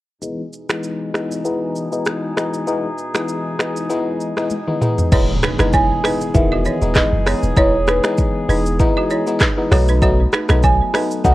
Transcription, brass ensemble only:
0.22 E2 B2 D#4 G#4
4.82 D#4
5.12 G#3 B3 G#4
9.71 A3 B3

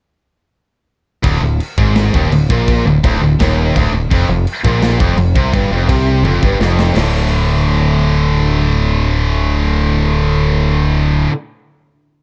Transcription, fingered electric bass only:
1.24 D1
1.41 D1
1.78 G#1
2.14 D#1
2.31 D1
2.50 A#1
2.85 D1
3.04 D1
3.21 D1
3.40 D#1
3.76 D1
3.92 D1
4.11 F1
4.29 F1
4.65 A#1
5.00 F1
5.17 F1
5.35 C2
5.53 G1
5.71 F1
5.89 C2
6.23 F1
6.43 G1
6.60 F1
6.96 D1

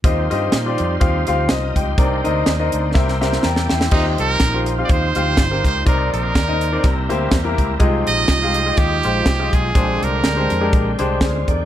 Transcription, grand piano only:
0.04 D#3 C4 F4 G4 D#5
0.30 C4 F4 G4 D#5
0.66 C4 F4 G4 D5
1.00 C4 F4 G4 F5
1.27 C4 F4 G4 F5
1.49 C5 D#5
1.76 D#5 G5
1.98 C3 C4 D#4 A#4 D5
2.24 C4 D#4 A#4 D#5
2.59 C4 D#4 A#4 D#5
2.94 C3 C4 G4 A#4 E5
3.21 C4 G4 A#4 E5
3.43 G5 A#5
3.70 E5 G5
3.91 D#3 C4 F4 G4 D#5
4.54 C4 F4 G4 A#4
4.78 C4 F4 G4 F5
5.16 C4 F4 G4 F5
5.51 C4 F4 G4 A#4
5.85 C3 C4 D#4 A#4 D5
6.48 C4 D#4 A#4 D#5
6.72 C4 D#4 A#4 D5
6.83 C3
7.09 A#3 E4 G4 C5
7.44 A#3 E4 G4 A#4
7.79 C3 G#3 F4 G4 D#5
8.42 G#3 F4 G4 F5
8.66 G#3 F4 G4 D#5
9.04 G#3 F4 G4 C5
9.39 G#3 F4 G4 D#5
9.74 A#2 G#3 D4 G4 C5
10.36 G#3 D4 G4 C5
10.61 G#3 D4 G4 A#4
10.99 G#3 D4 G4 C5
11.22 G#4
11.48 A#4 D5

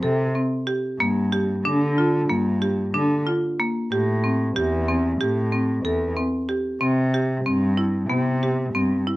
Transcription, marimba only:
0.03 A4
0.35 C4
0.67 G4
1.00 A#3
1.32 G4
1.65 D4
1.98 F4
2.29 A#3
2.62 G4
2.94 D4
3.27 F4
3.60 A#3
3.92 G4
4.24 C4
4.56 G4
4.88 C4
5.21 G4
5.53 C4
5.85 A4
6.17 C4
6.49 G4
6.81 C4
7.14 G4
7.46 C4
7.78 E4
8.10 B3
8.43 G4
8.75 C4
9.07 E4

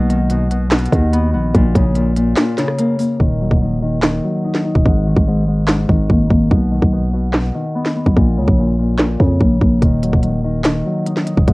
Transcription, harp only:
Already playing: B2 D#4
0.09 D#3
0.31 B2
0.51 B2
0.72 B2
0.92 D#3
1.13 B3
1.34 B3
1.54 A#2
1.75 C#3
1.96 A#2
2.17 A#2
2.37 A#2
2.58 C#3
2.79 A#3
2.99 A#3
3.20 D#3
3.40 F#3
3.61 D#3
3.82 D#3
4.03 D#3
4.23 F#3
4.44 D#4
4.64 D#4
4.85 G#2
5.06 D#3
5.27 G#2
5.48 G#2
5.68 G#2
5.89 D#3
6.10 A#3
6.31 A#3
6.51 B2
6.71 D#3
6.93 B2
7.13 B2
7.34 B2
7.54 D#3
7.75 B3
7.96 B3
8.16 A#2
8.37 C#3
8.58 A#2
8.79 A#2
8.99 A#2
9.20 C#3
9.41 A#3
9.61 A#3
9.82 D#3
10.03 F#3
10.23 D#3
10.44 D#3
10.65 D#3
10.85 F#3
11.06 D#4
11.26 D#4
11.47 G#2

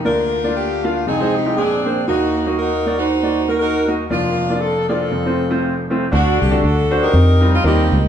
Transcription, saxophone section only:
0.06 D4 F4 A#4
0.57 G4
0.85 F4
1.07 C4 D#4 G#4
1.36 G4
1.57 C4 D4 G#4
2.08 A#3 D#4 F#4
2.59 D#4 F#4 A#4
2.98 D#4 F#4 C5
3.50 A#4
3.60 D#4 F#4 A#4
4.12 A#3 D4 F4
4.61 A4
4.89 C4 F4 A4
6.14 A3 D4 F#4
6.42 G4
6.64 D4 F#4 A4
7.03 D#4 G4 A#4
7.54 F4
7.66 A#3 D#4 G4

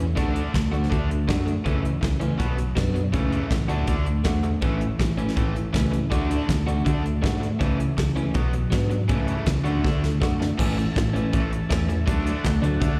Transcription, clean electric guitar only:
0.15 A3 D4 F#4
0.72 A3 D4 F#4
1.28 A3 D4 F#4
1.65 E3 A3 C#4
2.20 E3 A3 C#4
2.76 F#3 B3 D4
3.12 E3 A3 C#4
3.68 A3 D4 F#4
4.24 A3 D4 F#4
4.61 E3 A3 C#4
5.17 E3 A3 C#4
5.73 E3 A3 C#4
6.11 A3 D4 F#4
6.67 A3 D4 F#4
7.22 A3 D4 F#4
7.59 E3 A3 C#4
8.16 E3 A3 C#4
8.70 F#3 B3 D4
9.09 E3 A3 C#4
9.64 A3 D4 F#4
10.20 A3 D4 F#4
10.58 E3 A3 C#4
11.13 E3 A3 C#4
11.69 E3 A3 C#4
12.06 F#3 A3 D4
12.62 F#3 A3 D4

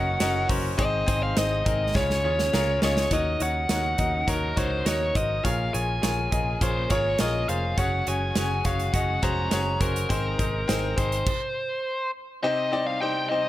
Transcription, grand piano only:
Already playing: C#4 F#4 A#4 C#5 D#5
0.20 C#4 F#4 A#4 D#5
0.49 C#4 F#4 A#4 C5
0.78 G#2 C4 D#4 G#4 C5
1.06 C4 D#4 G#4 C5
1.36 C4 D#4 G#4 C5
1.65 C4 D#4 G#4 A#4
1.95 C#3 C#4 F4 G#4 C#5
2.24 C#4 F4 G#4 C#5
2.53 C#4 F4 G#4 A#4
2.82 C#4 F4 G#4 D#5
3.12 D#3 D#4 F#4 A#4 C#5
3.40 D#4 F#4 A#4 C#5
3.69 D#4 F#4 A#4 C#5
3.98 D#4 F#4 A#4 D#5
4.27 D#4 F#4 A#4 C#5
4.56 D#4 F#4 A#4 C#5
4.85 D#4 F#4 A#4 D#5
5.15 D#4 F#4 A#4 C5
5.43 A#2 F4 G#4 A#4 C#5
5.73 F4 G#4 A#4 C#5
6.02 F4 G#4 A#4 C#5
6.31 F4 G#4 A#4 D#5
6.61 F4 G#4 A#4 C#5
6.90 F4 G#4 A#4 C#5
7.19 F4 G#4 A#4 C#5
7.48 F4 G#4 A#4 C5
7.78 C#4 F#4 G#4 C#5
8.06 C#4 F#4 G#4 C#5
8.36 C#4 F#4 G#4 C#5
8.65 C#4 F#4 G#4 C#5
8.94 C#4 F#4 G#4 D#5
9.23 C#4 F#4 G#4 C5
9.51 C#4 F#4 G#4 C#5
9.81 C#4 F#4 G#4 C5
10.09 G#2 C4 D#4 G#4 C5
10.38 C4 D#4 G#4 C5
10.68 C4 D#4 G#4 C5
10.96 C4 D#4 G#4 A#4
12.43 C3 C4 D#4 G4 C5
12.72 C4 D#4 G4 D5
13.01 C4 D#4 G4 C5
13.31 C4 D#4 G4 C5

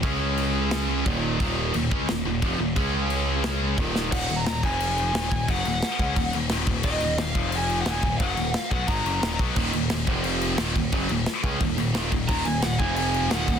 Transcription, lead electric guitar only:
4.12 F#5
4.36 A#5
4.46 A#5
4.64 G#5
5.50 F#5
5.66 F#5
6.85 D#5
7.18 F5
7.49 F5
7.56 G#5
7.81 F#5
7.90 G#5
8.17 F#5
8.57 F5
8.70 F#5
8.87 A#5
12.28 A#5
12.44 G#5
12.63 F#5
12.78 G#5
12.96 G#5
13.31 F#5

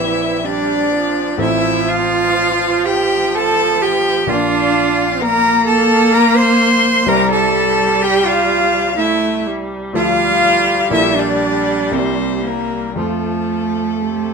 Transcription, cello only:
Already playing: E4
0.45 D4
1.40 E4
1.89 F4
2.87 G4
3.35 A4
3.82 G4
4.29 F4
5.21 A#4
5.68 A4
6.14 A#4
6.37 C5
7.09 A#4
7.31 A4
8.03 G4
8.25 F4
8.97 E4
9.95 F4
10.92 E4
11.17 D4
11.93 C4
12.43 A#3
12.95 A3

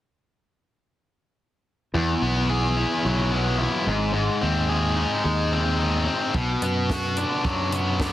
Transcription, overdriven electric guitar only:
1.94 E2
2.22 B3
2.50 G#4
2.77 E4
3.05 F#3
3.32 B3
3.58 E4
3.85 G#2
4.13 G#2
4.41 C4
4.69 G#4
4.96 D#4
5.24 G#3
5.52 C4
5.79 D#4
6.07 C4
6.35 B2
6.62 B3
6.90 F#4
7.17 D4
7.46 F#3
7.73 B3
8.00 D4

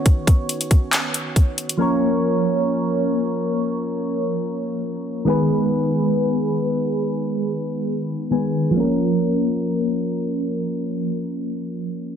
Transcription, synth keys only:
Already playing: D#3 B3 C#4 F#4 C#5
1.77 F3 A#3 C#4 A#4
1.82 C#5
5.25 D#3 G#3 B3 G#4
5.29 B4
8.31 D#3 G#3 B3 G#4 B4 G#5
8.71 F3 A#3
8.77 C#4 A#4

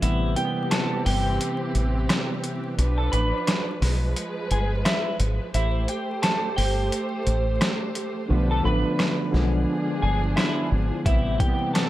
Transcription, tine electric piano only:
Already playing: E4
0.01 C3 E3 G3 B3
0.35 C3 E3 G3 A#3
0.45 B3
8.28 D3 F3 A3 B3
8.63 D3 F3 A3 B3
9.31 D3 F3 G#3 A#3
9.41 B3
10.37 B3
10.70 D4
10.91 E4
11.05 C3 E3 G3 B3
11.39 C3 E3 G3 A#3
11.48 B3

